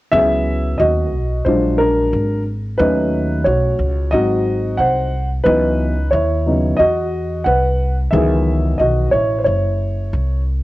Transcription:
0.11 0.76 C#2 loud
0.11 1.09 F#3 soft
0.11 1.09 B3 soft
0.11 1.09 C#4 medium
0.11 1.08 E4 medium
0.11 0.76 G#4 medium
0.11 0.81 E5 loud
0.78 1.13 D#2 medium
0.78 1.42 F#4 medium
0.78 1.47 D#5 medium
1.13 1.44 B1 medium
1.45 2.09 A#1 medium
1.45 2.42 F#3 medium
1.45 2.42 G#3 soft
1.45 1.79 D4 medium
1.45 1.77 F4 medium
1.45 1.80 C5 medium
1.78 2.42 D4 soft
1.78 2.41 A#4 medium
2.13 2.76 G#1 medium
2.78 3.43 D#2 loud
2.78 3.75 F#3 medium
2.78 3.75 A3 soft
2.78 3.75 C#4 medium
2.78 3.42 D#4 medium
2.78 3.47 B4 medium
3.44 3.78 B1 medium
3.44 4.09 F#4 medium
3.44 4.14 C#5 medium
3.79 4.11 C#2 medium
4.11 4.76 G#1 medium
4.11 5.08 F#3 soft
4.11 5.09 C4 soft
4.11 5.09 D#4 medium
4.11 4.76 F#4 medium
4.11 4.80 D#5 medium
4.77 5.42 C2 medium
4.77 5.28 C5 medium
4.77 5.27 F#5 medium
5.44 6.09 C#2 loud
5.44 5.92 E3 medium
5.44 5.92 F#3 soft
5.44 5.92 B3 medium
5.44 6.09 D#4 medium
5.44 6.13 B4 medium
6.11 6.76 D#2 medium
6.11 6.76 E4 medium
6.11 6.80 C#5 medium
6.46 6.76 C#3 soft
6.46 6.76 F#3 soft
6.46 6.76 B3 soft
6.46 6.76 D#4 medium
6.77 7.42 E2 medium
6.77 7.42 F#4 medium
6.77 7.47 D#5 medium
7.44 8.09 C2 medium
7.44 7.95 B4 medium
7.44 7.94 F#5 medium
8.11 8.76 C#2 loud
8.11 9.09 D#3 medium
8.11 9.08 E3 medium
8.11 9.09 F#3 soft
8.11 9.09 B3 medium
8.11 8.76 G#4 medium
8.11 8.80 E5 medium
8.78 9.11 B1 medium
8.78 9.11 F#4 medium
8.78 9.09 D#5 medium
9.11 9.44 A1 medium
9.11 9.39 E4 medium
9.11 9.40 C#5 medium
9.38 9.45 C5 medium
9.44 10.09 F#1 medium
9.44 10.42 E4 medium
9.44 10.41 C#5 medium
10.13 10.63 C2 medium

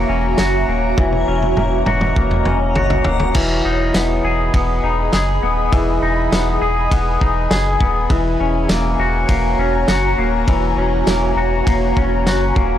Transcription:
0.00 0.98 E3 medium
0.00 0.68 A#3 medium
0.00 0.38 F#4 medium
0.00 3.31 F#4 medium
0.00 3.31 C#5 medium
0.00 0.95 E5 medium
0.00 3.31 A#5 medium
0.09 0.35 E1 loud
0.09 1.27 C#4 medium
0.38 0.64 F#1 loud
0.38 1.86 F#4 medium
0.38 snare loud
0.38 ride medium
0.38 tambourine medium
0.68 0.94 D#1 medium
0.68 1.57 A#3 medium
0.98 1.24 E1 loud
0.98 3.35 E3 medium
0.98 3.33 D#5 medium
0.98 kick loud
0.98 high tom medium
1.12 high tom medium
1.28 1.54 E1 loud
1.28 2.46 C#4 medium
1.42 high tom medium
1.57 1.83 E1 loud
1.57 2.16 A#3 medium
1.57 mid tom medium
1.86 2.13 E1 medium
1.86 2.75 F#4 medium
1.86 mid tom medium
2.01 mid tom medium
2.16 2.43 E1 loud
2.16 3.05 A#3 medium
2.16 kick medium
2.31 mid tom medium
2.45 2.78 E1 loud
2.45 3.42 C#4 medium
2.45 mid tom medium
2.75 3.02 F#1 loud
2.75 3.42 F#4 medium
2.75 floor tom medium
2.90 floor tom medium
3.04 3.32 D#1 medium
3.04 3.41 A#3 medium
3.04 floor tom loud
3.20 floor tom loud
3.34 3.61 E1 loud
3.34 5.72 E3 medium
3.34 8.06 G#4 medium
3.34 8.06 D#5 medium
3.34 12.78 G#5 medium
3.34 8.06 B5 medium
3.34 kick loud
3.34 crash loud
3.65 3.91 E1 loud
3.65 4.83 D#4 medium
3.94 4.21 E1 loud
3.94 4.53 B3 medium
3.94 snare loud
3.94 ride medium
3.94 tambourine medium
4.24 4.50 E1 loud
4.24 5.12 G#4 medium
4.54 4.80 E1 loud
4.54 5.42 B3 medium
4.54 kick medium
4.54 ride medium
4.83 5.09 E1 loud
4.83 6.01 D#4 medium
5.13 5.39 F#1 loud
5.13 6.60 G#4 medium
5.13 snare loud
5.13 ride medium
5.13 tambourine medium
5.43 5.69 D#1 loud
5.43 6.31 B3 medium
5.72 5.99 E1 loud
5.72 8.10 E3 medium
5.72 kick loud
5.72 ride medium
6.02 6.28 E1 loud
6.02 7.20 D#4 medium
6.32 6.58 E1 loud
6.32 6.90 B3 medium
6.32 snare loud
6.32 ride medium
6.32 tambourine medium
6.61 6.88 E1 loud
6.61 7.50 G#4 medium
6.91 7.18 E1 loud
6.91 7.80 B3 medium
6.91 kick medium
6.91 ride medium
7.21 7.47 E1 loud
7.21 8.16 D#4 medium
7.21 kick medium
7.51 7.77 F#1 loud
7.51 8.16 G#4 medium
7.51 snare loud
7.51 ride medium
7.51 tambourine medium
7.80 8.07 D#1 loud
7.80 8.17 B3 medium
7.80 kick loud
8.10 8.36 E1 loud
8.10 10.48 E3 medium
8.10 12.78 F#4 medium
8.10 12.78 C#5 medium
8.10 12.78 A#5 medium
8.10 kick loud
8.10 ride medium
8.40 8.66 E1 loud
8.40 9.58 C#4 medium
8.69 8.96 E1 loud
8.69 9.28 A#3 medium
8.69 snare loud
8.69 ride medium
8.69 tambourine medium
8.98 9.25 E1 loud
8.98 9.88 F#4 medium
9.29 9.55 E1 loud
9.29 10.17 A#3 medium
9.29 kick medium
9.29 ride medium
9.58 9.85 E1 loud
9.58 10.77 C#4 medium
9.88 10.15 F#1 loud
9.88 11.36 F#4 medium
9.88 snare loud
9.88 ride medium
9.88 tambourine medium
10.18 10.44 D#1 medium
10.18 11.07 A#3 medium
10.48 10.74 E1 loud
10.48 12.78 E3 loud
10.48 kick loud
10.48 ride medium
10.76 11.03 E1 loud
10.76 11.95 C#4 medium
11.06 11.33 E1 loud
11.06 11.66 A#3 medium
11.06 snare loud
11.06 ride medium
11.06 tambourine medium
11.35 11.62 E1 loud
11.35 12.26 F#4 medium
11.67 11.93 E1 loud
11.67 12.55 A#3 medium
11.67 kick medium
11.67 ride medium
11.97 12.28 E1 loud
11.97 12.78 C#4 medium
11.97 kick medium
12.26 12.52 F#1 medium
12.26 12.78 F#4 medium
12.26 snare loud
12.26 ride medium
12.26 tambourine medium
12.56 12.78 D#1 loud
12.56 12.78 A#3 medium
12.56 kick loud

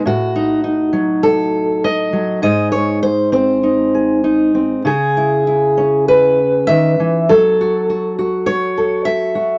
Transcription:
0.05 2.38 A2 medium
0.05 1.83 F#4 medium
0.36 0.63 D#4 soft
0.64 2.38 D#4 soft
0.93 2.12 F#3 medium
1.23 2.42 A4 medium
1.84 2.41 D#5 medium
2.13 2.42 F#3 soft
2.42 4.85 G#2 medium
2.42 3.62 D#4 soft
2.42 3.94 G#4 soft
2.42 2.71 D#5 medium
2.72 3.01 C#5 medium
3.03 3.32 C5 medium
3.32 4.53 C4 medium
3.32 4.86 C5 medium
3.63 4.23 D#4 soft
3.94 4.87 G#4 soft
4.24 4.82 D#4 soft
4.55 4.81 C4 soft
4.85 6.68 C#3 medium
4.85 6.67 G#4 medium
5.17 5.46 E4 soft
5.47 6.38 E4 soft
5.77 7.30 C#4 medium
6.08 7.29 B4 medium
6.67 6.99 D#3 medium
6.67 7.28 E5 medium
7.00 7.29 E3 soft
7.29 9.58 F#3 medium
7.29 8.76 A4 medium
7.61 7.88 F#4 soft
7.90 8.17 F#4 soft
8.19 9.34 F#4 medium
8.46 9.05 C#5 medium
8.78 9.58 A4 soft
9.05 9.58 E5 medium
9.35 9.58 F#4 soft

